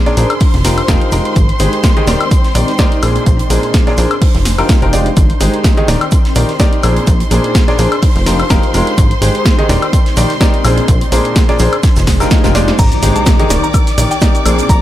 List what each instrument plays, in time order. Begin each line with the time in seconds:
Already playing: violin section C5 C6
0.06 grand piano A#2 D4 G#4 A#4 D5, snare, closed hi-hat
0.17 analog synth bass A#1, grand piano D4 G#4 A#4 C5, open hi-hat, shaker
0.30 closed hi-hat, high woodblock
0.40 kick, closed hi-hat, open hi-hat
0.54 analog synth bass F1, snare, closed hi-hat
0.65 grand piano F3 D#4 F4 G4 A#4, snare, open hi-hat, shaker
0.78 closed hi-hat, high woodblock
0.84 ambient pad G5, snare
0.88 analog synth bass F1, grand piano F3 D#4 F4 G4 A#4, kick, snare, closed hi-hat, shaker
1.02 closed hi-hat
1.12 analog synth bass F1, grand piano G#3 D#4 F4 G4 A#4, open hi-hat, shaker
1.25 closed hi-hat
1.36 analog synth bass G#1, kick, closed hi-hat, shaker
1.49 closed hi-hat
1.59 analog synth bass G#1, grand piano G#3 D#4 G4 G#4 C5, open hi-hat, shaker
1.73 closed hi-hat
1.83 kick, snare, closed hi-hat, shaker
1.97 grand piano D#3 D#4 G4 G#4 D#5, closed hi-hat
2.07 analog synth bass D#1, grand piano D#3 D#4 G4 A#4 D5, snare, open hi-hat, shaker
2.21 closed hi-hat, high woodblock
2.31 kick, closed hi-hat, shaker
2.44 snare, closed hi-hat
2.55 analog synth bass A#1, grand piano D#3 D#4 G4 A#4 D5, open hi-hat, shaker
2.68 snare, closed hi-hat
2.78 grand piano D#4 G4 A#4 D5, kick, snare, closed hi-hat, shaker
2.92 closed hi-hat
3.03 analog synth bass A#1, grand piano A#2 D4 G#4 A#4 C5, open hi-hat, high woodblock, shaker
3.15 closed hi-hat
3.26 analog synth bass A#1, kick, closed hi-hat, shaker
3.39 closed hi-hat
3.50 analog synth bass A#1, grand piano A#2 D4 G#4 A#4 C5, open hi-hat, shaker
3.63 closed hi-hat
3.74 kick, snare, closed hi-hat, shaker
3.87 grand piano A#2 D4 G#4 A#4 D5, snare, closed hi-hat
3.97 analog synth bass A#1, grand piano D4 G#4 A#4 C5, open hi-hat, shaker
4.11 closed hi-hat, high woodblock
4.22 kick, closed hi-hat, open hi-hat
4.35 analog synth bass F1, snare, closed hi-hat
4.45 snare, open hi-hat, shaker
4.58 grand piano F3 D#4 F4 G4 A#4, closed hi-hat, high woodblock
4.65 ambient pad G5
4.69 kick, snare, closed hi-hat, shaker
4.82 analog synth bass F1, grand piano F3 D#4 F4 G4 A#4, closed hi-hat
4.93 grand piano G#3 D#4 F4 G4 D5, open hi-hat, shaker
5.06 closed hi-hat
5.17 analog synth bass G#1, violin section C5 C6, kick, closed hi-hat, shaker
5.30 closed hi-hat
5.40 analog synth bass G#1, grand piano G#3 D#4 G4 G#4 C5, open hi-hat, shaker
5.54 closed hi-hat
5.64 kick, snare, closed hi-hat, shaker
5.77 grand piano D#3 D#4 G4 G#4 D#5, closed hi-hat
5.88 analog synth bass D#1, grand piano D#3 D#4 G4 A#4 D5, snare, open hi-hat, shaker
6.01 closed hi-hat, high woodblock
6.11 kick, closed hi-hat, shaker
6.25 snare, closed hi-hat
6.35 analog synth bass A#1, grand piano D#3 D#4 G4 A#4 D5, open hi-hat, shaker
6.49 snare, closed hi-hat
6.60 grand piano D#4 G4 A#4 D5, kick, snare, closed hi-hat, shaker
6.73 closed hi-hat
6.83 analog synth bass A#1, grand piano A#2 D4 G#4 A#4 C5, open hi-hat, high woodblock, shaker
6.97 ambient pad C5, closed hi-hat
7.07 analog synth bass A#1, kick, closed hi-hat, shaker
7.20 closed hi-hat
7.31 analog synth bass A#1, grand piano A#2 D4 G#4 A#4 C5, open hi-hat, shaker
7.44 closed hi-hat
7.55 kick, snare, closed hi-hat, shaker
7.68 grand piano A#2 D4 G#4 A#4 D5, snare, closed hi-hat
7.79 analog synth bass A#1, grand piano D4 G#4 A#4 C5, open hi-hat, shaker
7.92 closed hi-hat, high woodblock
8.02 kick, closed hi-hat, open hi-hat
8.16 analog synth bass F1, snare, closed hi-hat
8.26 grand piano F3 D#4 F4 G4 A#4, snare, open hi-hat, shaker
8.31 ambient pad G5
8.40 closed hi-hat, high woodblock
8.50 analog synth bass F1, grand piano F3 D#4 F4 G4 A#4, kick, snare, closed hi-hat, shaker
8.63 closed hi-hat
8.74 analog synth bass F1, grand piano G#3 D#4 F4 G4 A#4, open hi-hat, shaker
8.87 closed hi-hat
8.98 analog synth bass G#1, kick, closed hi-hat, shaker
9.11 closed hi-hat
9.22 analog synth bass G#1, grand piano G#3 D#4 G4 G#4 C5, open hi-hat, shaker
9.35 closed hi-hat
9.45 kick, snare, closed hi-hat, shaker
9.58 grand piano D#3 D#4 G4 G#4 D#5, closed hi-hat
9.69 analog synth bass D#1, grand piano D#3 D#4 G4 A#4 D5, snare, open hi-hat, shaker
9.74 ambient pad D5
9.82 closed hi-hat, high woodblock
9.93 kick, closed hi-hat, shaker
10.06 snare, closed hi-hat
10.17 analog synth bass A#1, grand piano D#3 D#4 G4 A#4 D5, open hi-hat, shaker
10.30 snare, closed hi-hat
10.41 grand piano D#4 G4 A#4 D5, kick, snare, closed hi-hat, shaker
10.54 closed hi-hat
10.64 analog synth bass A#1, grand piano A#2 D4 G#4 A#4 C5, open hi-hat, high woodblock, shaker
10.78 ambient pad C5, closed hi-hat
10.88 analog synth bass A#1, kick, closed hi-hat, shaker
11.01 closed hi-hat
11.12 analog synth bass A#1, grand piano A#2 D4 G#4 A#4 C5, open hi-hat, shaker
11.25 closed hi-hat
11.36 kick, snare, closed hi-hat, shaker
11.49 grand piano A#2 D4 G#4 A#4 D5, snare, closed hi-hat
11.59 analog synth bass A#1, grand piano D4 G#4 A#4 C5, open hi-hat, shaker
11.73 closed hi-hat, high woodblock
11.83 kick, snare, closed hi-hat, swell, shaker
11.96 analog synth bass F1, snare, closed hi-hat, shaker
12.07 kick, snare, open hi-hat, shaker
12.20 grand piano F3 D#4 F4 G4 A#4, snare, closed hi-hat, high woodblock, shaker
12.25 ambient pad G5
12.31 kick, snare, closed hi-hat, shaker
12.44 analog synth bass F1, grand piano F3 D#4 F4 G4 A#4, snare, closed hi-hat, shaker
12.55 grand piano G#3 D#4 F4 G4 D5, snare, open hi-hat, shaker
12.67 snare, closed hi-hat
12.79 analog synth bass G#1, violin section D5 D6, synth bell A#5, kick, closed hi-hat, crash, impact, shaker
12.92 closed hi-hat, shaker
13.02 analog synth bass G#1, grand piano G#3 D#4 G4 G#4 C5, open hi-hat, shaker
13.16 synth bell A#5, closed hi-hat, shaker
13.26 kick, snare, closed hi-hat, shaker
13.39 grand piano D#3 D#4 G4 G#4 D#5, closed hi-hat
13.50 analog synth bass D#1, grand piano D#3 D#4 G4 A#4 D5, snare, open hi-hat, shaker
13.60 ambient pad D5, synth bell A#5, shaker
13.74 kick, closed hi-hat, high woodblock, shaker
13.87 snare, closed hi-hat, shaker
13.98 analog synth bass A#1, grand piano D#3 D#4 G4 A#4 D5, open hi-hat, shaker
14.10 synth bell G5, snare, closed hi-hat, shaker
14.21 grand piano D#4 G4 A#4 D5, kick, snare, closed hi-hat, shaker
14.35 closed hi-hat, shaker
14.45 analog synth bass A#1, grand piano A#2 D4 G#4 A#4 C5, open hi-hat, high woodblock, shaker
14.58 closed hi-hat, shaker
14.69 analog synth bass A#1, synth bell A#5, kick, closed hi-hat, shaker